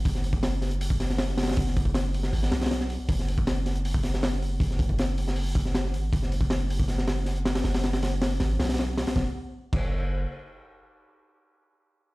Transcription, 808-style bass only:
\new Staff \with { instrumentName = "808-style bass" } { \clef bass \time 4/4 \key b \dorian \tempo 4 = 158 fis,,1 | fis,,2 gis,,8 b,,4 r8 | fis,,1 | fis,,2.~ fis,,8 gis,,8 |
fis,,1 | fis,,2 gis,,8 b,,4 r8 | fis,,8 r4 fis,,4. r4 | r1 | }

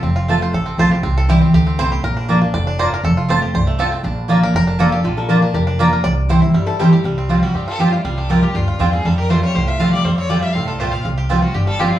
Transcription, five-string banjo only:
\new Staff \with { instrumentName = "Five-string banjo" } { \time 4/4 \key c \mixolydian \tempo 4 = 240 << { r4. c''8 a'4 c''4 | r8 a'8 g'4 g'4 c''4 | bes'4. r8 d''4 c''8 bes'8 | a'4 c''4 c''4 a'4~ |
a'8 r4 bes'8 bes'4 a'4 | r2. r8 bes'8 | d''4 c''4. r4. | r1 |
r1 | r1 | r1 | r1 | } \\ { <c' g'>8 f'8 a4. c'4 g'8 | c'4. c'4 c'4 g'8 | r8 d'8 bes8 d'4 d'4. | r8 f'4 g'4 a4 c'8 |
d'4 bes4. d'4 g'8 | d8 bes8 g'8 d'8 g'8 d'8 bes4 | r4. e'8 g8 e'8 g8 g'8 | g8 c'8 f'8 g8 c'8 f'8 g'8 f'8 |
g8 g'8 g8 f'8 g'8 f'8 c'8 g8 | g8 g'8 g8 f'8 g'8 f'8 c'8 g8 | g8 c'8 f'8 g8 c'8 f'8 g'8 f'8 | f'8 g'8 g8 f'8 g'8 g8 f'8 c'8 | } >> }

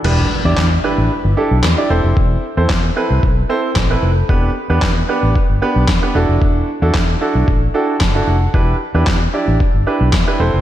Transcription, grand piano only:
\new Staff \with { instrumentName = "Grand piano" } { \time 4/4 \key e \minor \tempo 4 = 113 << { r1 | r1 | r1 | r2 r8 g''8 r8 fis''8 |
r1 | } \\ { <d' e' g' b'>16 r8 <d' e' g' d''>16 r8 <d' e' g' b'>8 r8 <d' e' g' a'>16 r8 <d' e' g' d''>16 <c' e' a' c''>8~ | <c' e' a' c''>8 r16 <c' e' a' c''>16 r8 <c' e' a' b'>8 r8 <c' e' a' c''>16 r8 <c' e' a' b'>16 r8 | <b d' g' b'>16 r8 <b d' g' b'>16 r8 <b d' g' b'>8 r8 <b d' g' b'>16 r8 <b d' g' b'>16 <d' e' fis' a'>8~ | <d' e' fis' a'>8 r16 <d' e' fis' a'>16 r8 <d' e' fis' a'>8 r8 <d' e' fis' a'>16 r8 <d' e' fis' a'>16 r8 |
<d' e' g' b'>16 r8 <d' e' g' b'>16 r8 <d' e' g' d''>8 r8 <d' e' g' b'>16 r8 <d' e' g' b'>16 <c' e' a' c''>8 | } >> }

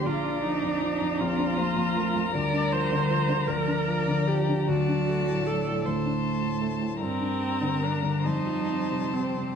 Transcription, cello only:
\new Staff \with { instrumentName = "Cello" } { \time 6/8 \key bes \major \tempo 4. = 52 d'4. c'8 bes8 a8 | g4. f4. | fis4. a4. | g2. | }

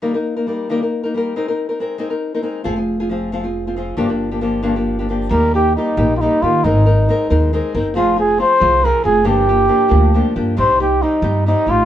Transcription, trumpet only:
\new Staff \with { instrumentName = "Trumpet" } { \time 6/8 \key ees \major \tempo 4. = 91 r2. | r2. | r2. | r2. |
bes'8 g'8 ees'8.~ ees'32 f'32 ees'8 f'8 | ees'2 r4 | f'8 aes'8 c''4 bes'8 aes'8 | g'2~ g'8 r8 |
c''8 g'8 ees'4 ees'8 f'8 | }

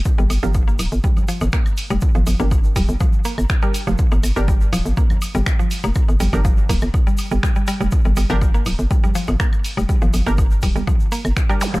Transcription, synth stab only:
\new Staff \with { instrumentName = "Synth stab" } { \time 4/4 \key g \minor \tempo 4 = 122 r8. <d' g' bes'>16 r2. | r8. <d' g' bes'>16 r2 r16 <d' g' bes'>16 r8 | r8. <d' g' bes'>16 r2. | r8. <d' g' bes'>16 r2. |
r8. <d' g' bes'>16 r2. | r8. <d' g' bes'>16 r2 r16 <d' g' bes'>16 r8 | }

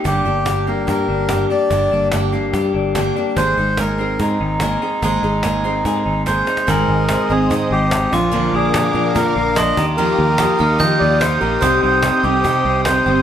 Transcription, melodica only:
\new Staff \with { instrumentName = "Melodica" } { \time 4/4 \key aes \lydian \tempo 4 = 145 g'4. bes'8 bes'4. d''8~ | d''4 r2. | c''4 bes'4 ees'2~ | ees'2. c''4 |
bes'4. aes'4 g'4 f'8~ | f'8 aes'4. bes'4 ees''8. r16 | bes'2 ees''8 d''8 c''8 bes'8 | c''8 c''4 g'4. c''4 | }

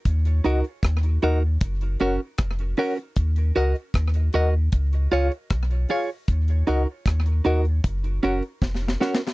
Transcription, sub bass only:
\new Staff \with { instrumentName = "Sub bass" } { \clef bass \time 4/4 \key ees \minor \tempo 4 = 77 ees,8 des,16 r16 ees,8 ees,8 ges,,8 ges,,16 r16 f,,8 r8 | ees,8 des,16 r16 ees,8 ees,8 des,8 des,16 r16 ces,8 r8 | ees,8 des,16 r16 ees,8 ees,8 ges,,8 ges,,16 r16 f,,8 r8 | }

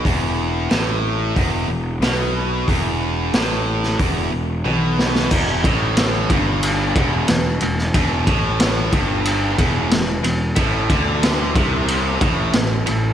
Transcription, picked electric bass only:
\new Staff \with { instrumentName = "Picked electric bass" } { \clef bass \time 4/4 \key a \major \tempo 4 = 91 e,,4 a,,4 e,,8 e,,8 b,,4 | e,,4 a,,4 e,,8 e,,8 b,,4 | e,,8 a,,4 g,,4 e,,8 e,,8 e,,8 | e,,8 a,,4 g,,4 e,,8 e,,8 e,,8 |
a,,8 d,4 c,4 a,,8 a,,8 a,,8 | }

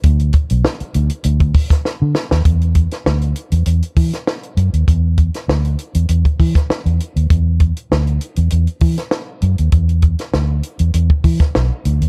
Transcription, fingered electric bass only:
\new Staff \with { instrumentName = "Fingered electric bass" } { \clef bass \time 4/4 \key e \mixolydian \tempo 4 = 99 d,8 r16 b,,16 r8 d,16 r16 d,8 r8. d16 r16 dis,16 | e,8. r16 d,8 r16 e,16 e,16 r16 e16 r8. fis,16 dis,16 | e,8. r16 d,8 r16 e,16 e,16 r16 e16 r8 e,16 r16 dis,16 | e,8. r16 d,8 r16 e,16 e,16 r16 e16 r8. fis,16 dis,16 |
e,8. r16 d,8 r16 e,16 e,16 r16 e16 r16 b,,16 r16 d,16 dis,16 | }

